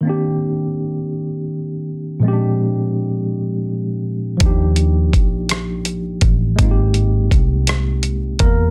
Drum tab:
HH |------|------|xxxxxx|xxxxxx|
SD |------|------|---r--|---r--|
BD |------|------|o-o--o|o-o--o|